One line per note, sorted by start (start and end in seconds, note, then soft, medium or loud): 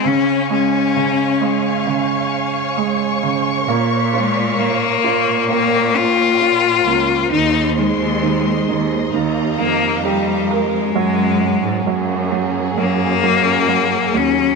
0.00 3.64 F5 medium
0.00 3.65 G#5 medium
0.04 0.95 C#3 medium
0.04 0.51 C#4 medium
0.04 7.28 C#5 medium
0.04 7.28 C#6 medium
0.50 1.40 G#3 soft
0.50 1.84 C#4 medium
0.96 1.85 C#3 soft
1.41 2.76 G#3 soft
1.87 3.21 C#3 soft
2.77 3.66 G#3 soft
3.23 3.67 C#3 soft
3.68 5.01 A#2 loud
3.68 4.58 A#3 medium
3.68 7.29 A#4 medium
3.68 5.49 F5 medium
4.14 4.61 G#3 medium
4.14 5.03 F4 soft
4.59 5.50 A#3 medium
4.59 5.49 A#3 soft
5.04 6.83 A#2 medium
5.04 6.39 F4 medium
5.49 6.85 A#3 medium
5.49 5.98 A#3 medium
5.49 7.30 G5 medium
5.96 7.31 F4 loud
6.41 7.29 F4 soft
6.86 7.29 C#2 medium
6.86 7.31 A#3 soft
7.32 7.96 D#2 medium
7.32 7.76 D#3 medium
7.32 7.74 D#4 medium
7.32 9.12 G#4 medium
7.32 9.12 C5 medium
7.32 10.92 D#5 medium
7.32 9.12 C6 medium
7.78 8.21 D#3 soft
7.78 9.10 G#3 medium
7.99 8.64 D#2 medium
8.23 8.67 D#3 soft
8.68 9.10 D#2 medium
8.68 9.12 D#3 soft
9.13 9.59 D#2 medium
9.13 10.92 D#3 medium
9.13 10.93 G4 medium
9.13 10.94 F5 medium
9.13 10.93 A#5 medium
9.59 10.92 F2 medium
9.59 10.92 A#3 soft
9.59 10.02 A#3 medium
10.05 10.52 G3 medium
10.05 10.93 G4 soft
10.51 12.32 G#3 medium
10.51 10.95 A#4 soft
10.95 11.60 F#2 medium
10.95 11.39 F#3 medium
10.95 14.55 F#3 medium
10.95 14.55 A#3 medium
10.95 14.55 C#4 medium
10.95 14.55 G#4 medium
11.41 11.85 F#3 soft
11.63 11.85 G#2 medium
11.86 12.73 F#2 medium
11.86 12.30 F#3 medium
12.32 12.76 F#3 soft
12.77 14.09 F#2 loud
12.77 13.22 F#3 medium
12.77 14.18 A#3 loud
13.23 13.67 F#3 soft
13.68 14.13 F#3 soft
14.14 14.55 D#2 medium
14.14 14.55 F#3 soft
14.14 14.55 C#4 medium